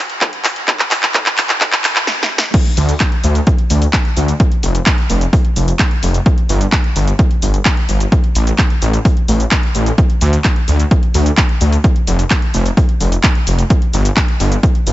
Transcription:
0.10 closed hi-hat
0.21 kick, clap, closed hi-hat
0.33 closed hi-hat
0.45 clap, open hi-hat
0.56 closed hi-hat
0.68 kick, clap, closed hi-hat
0.79 clap, closed hi-hat
0.91 clap, open hi-hat
1.03 clap, closed hi-hat
1.14 kick, clap, closed hi-hat
1.26 clap, closed hi-hat
1.38 clap, open hi-hat
1.49 clap, closed hi-hat
1.61 kick, clap, open hi-hat
1.72 clap, closed hi-hat
1.84 clap, open hi-hat
1.96 clap, closed hi-hat
2.07 snare
2.23 snare
2.38 snare
2.54 kick, closed hi-hat, crash, shaker
2.65 closed hi-hat
2.77 detuned saw bass D2, open hi-hat, shaker
2.89 closed hi-hat, shaker
3.00 kick, clap, closed hi-hat, shaker
3.12 closed hi-hat
3.24 detuned saw bass D2, open hi-hat, shaker
3.35 closed hi-hat, shaker
3.47 kick, closed hi-hat, shaker
3.58 closed hi-hat
3.70 detuned saw bass D2, open hi-hat, shaker
3.82 closed hi-hat, shaker
3.93 kick, clap, closed hi-hat, shaker
4.05 closed hi-hat
4.17 detuned saw bass D2, open hi-hat, shaker
4.28 closed hi-hat, shaker
4.40 kick, closed hi-hat, shaker
4.52 closed hi-hat
4.63 detuned saw bass F1, open hi-hat, shaker
4.75 closed hi-hat, shaker
4.86 kick, clap, closed hi-hat, shaker
4.98 closed hi-hat
5.10 detuned saw bass F1, open hi-hat, shaker
5.21 closed hi-hat, shaker
5.33 kick, open hi-hat, shaker
5.45 closed hi-hat
5.56 detuned saw bass F1, open hi-hat, shaker
5.68 closed hi-hat, shaker
5.79 kick, clap, closed hi-hat, shaker
5.91 closed hi-hat
6.03 detuned saw bass F1, open hi-hat, shaker
6.14 closed hi-hat, shaker
6.26 kick, closed hi-hat, shaker
6.38 closed hi-hat
6.49 detuned saw bass G1, open hi-hat, shaker
6.61 closed hi-hat, shaker
6.72 kick, clap, closed hi-hat, shaker
6.84 closed hi-hat
6.96 detuned saw bass G1, open hi-hat, shaker
7.07 closed hi-hat, shaker
7.19 kick, closed hi-hat, shaker
7.31 closed hi-hat
7.42 detuned saw bass G1, open hi-hat, shaker
7.54 closed hi-hat, shaker
7.65 kick, clap, closed hi-hat, shaker
7.77 closed hi-hat
7.89 detuned saw bass G1, open hi-hat, shaker
8.00 closed hi-hat, shaker
8.12 kick, closed hi-hat, shaker
8.24 closed hi-hat
8.35 detuned saw bass A1, open hi-hat, shaker
8.47 closed hi-hat, shaker
8.58 kick, clap, closed hi-hat, shaker
8.70 closed hi-hat
8.82 detuned saw bass A1, open hi-hat, shaker
8.94 closed hi-hat, shaker
9.05 kick, open hi-hat, shaker
9.17 closed hi-hat
9.28 detuned saw bass A1, open hi-hat, shaker
9.40 closed hi-hat, shaker
9.51 kick, clap, closed hi-hat, shaker
9.63 closed hi-hat
9.75 detuned saw bass A1, open hi-hat, shaker
9.86 closed hi-hat, shaker
9.98 kick, closed hi-hat, shaker
10.10 closed hi-hat
10.21 detuned saw bass D2, open hi-hat, shaker
10.33 closed hi-hat, shaker
10.44 kick, clap, closed hi-hat, shaker
10.56 closed hi-hat
10.68 detuned saw bass D2, open hi-hat, shaker
10.80 closed hi-hat, shaker
10.91 kick, closed hi-hat, shaker
11.03 closed hi-hat
11.14 detuned saw bass D2, open hi-hat, shaker
11.26 closed hi-hat, shaker
11.37 kick, clap, closed hi-hat, shaker
11.49 closed hi-hat
11.61 detuned saw bass D2, open hi-hat, shaker
11.73 closed hi-hat, shaker
11.84 kick, closed hi-hat, shaker
11.96 closed hi-hat
12.07 detuned saw bass F1, open hi-hat, shaker
12.19 closed hi-hat, shaker
12.30 kick, clap, closed hi-hat, shaker
12.42 closed hi-hat
12.54 detuned saw bass F1, open hi-hat, shaker
12.66 closed hi-hat, shaker
12.77 kick, open hi-hat, shaker
12.89 closed hi-hat
13.00 detuned saw bass F1, open hi-hat, shaker
13.12 closed hi-hat, shaker
13.23 kick, clap, closed hi-hat, shaker
13.35 closed hi-hat
13.47 detuned saw bass F1, open hi-hat, shaker
13.59 closed hi-hat, shaker
13.70 kick, closed hi-hat, shaker
13.82 closed hi-hat
13.93 detuned saw bass G1, open hi-hat, shaker
14.05 closed hi-hat, shaker
14.17 kick, clap, closed hi-hat, shaker
14.28 closed hi-hat
14.40 detuned saw bass G1, open hi-hat, shaker
14.52 closed hi-hat, shaker
14.63 kick, closed hi-hat, shaker
14.75 closed hi-hat
14.87 detuned saw bass G1, open hi-hat, shaker

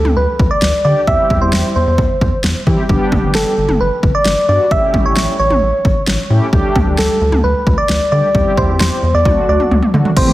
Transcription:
Already playing: soft synth lead A4
0.05 analog synth bass D2, mid tom
0.17 analog synth bass D2, soft synth lead B4
0.40 analog synth bass D2, kick
0.51 soft synth lead D5
0.62 analog synth bass D2, snare
0.85 analog synth bass D3, analog polysynth G3 A3 D4 G4, soft synth lead D5
1.07 analog synth bass E2, analog polysynth G3 C4 E4 G4, soft synth lead E5, kick
1.30 analog synth bass E2, kick
1.42 analog synth bass E2, soft synth lead C5
1.53 analog synth bass E2, snare
1.76 analog synth bass E2, soft synth lead C5
1.87 analog synth bass E2
1.98 analog synth bass E2, kick
2.21 analog synth bass E2, kick
2.44 analog synth bass E2, snare
2.67 analog synth bass E3, analog polysynth G3 C4 E4 G4, kick
2.89 analog synth bass G1, analog polysynth G3 B3 D4 G4, kick
3.12 analog synth bass G1, kick, mid tom
3.23 analog synth bass G1
3.35 analog synth bass G1, soft synth lead A4, snare
3.58 analog synth bass G1
3.69 analog synth bass G1, mid tom
3.80 analog synth bass G1, soft synth lead B4
4.03 analog synth bass G1, kick
4.15 soft synth lead D5
4.25 analog synth bass G1, snare
4.48 analog synth bass G2, analog polysynth G3 B3 D4 F#4, soft synth lead D5
4.71 analog synth bass A1, analog polysynth A3 C#4 G4, soft synth lead E5, kick
4.94 analog synth bass A1, kick, mid tom
5.05 analog synth bass A1, soft synth lead C#5
5.16 analog synth bass A1, snare
5.39 analog synth bass A1, soft synth lead C#5
5.50 analog synth bass A1, mid tom
5.62 analog synth bass A1
5.85 analog synth bass A1, kick
6.07 analog synth bass A1, snare
6.30 analog synth bass A2, analog polysynth A3 C#4 E4 G4
6.53 analog synth bass D2, analog polysynth G3 A3 D4 G4, kick
6.75 analog synth bass D2, kick, mid tom
6.87 analog synth bass D2
6.98 analog synth bass D2, soft synth lead A4, snare
7.21 analog synth bass D2
7.32 analog synth bass D2, mid tom
7.44 analog synth bass D2, soft synth lead B4
7.67 analog synth bass D2, kick
7.78 soft synth lead D5
7.89 analog synth bass D2, snare
8.12 analog synth bass D3, analog polysynth G3 A3 D4 G4, soft synth lead D5
8.35 analog synth bass E2, analog polysynth G3 C4 E4 G4, kick
8.57 analog synth bass E2, soft synth lead C5, kick
8.69 analog synth bass E2
8.80 analog synth bass E2, soft synth lead C5, snare
9.03 analog synth bass E2
9.14 analog synth bass E2, soft synth lead D5
9.25 analog synth bass D2, analog polysynth F#3 A3 D4 F#4, kick, high tom
9.48 analog synth bass D2, soft synth lead D5
9.60 mid tom
9.71 analog synth bass D2, mid tom
9.83 mid tom
9.94 analog synth bass D3, analog polysynth F#3 A3 D4 F#4, floor tom
10.05 floor tom
10.16 analog synth bass A1, string machine E3 A3 C4 G4, analog polysynth A3 C4 E4 G4, soft synth lead C5, kick, closed hi-hat, crash

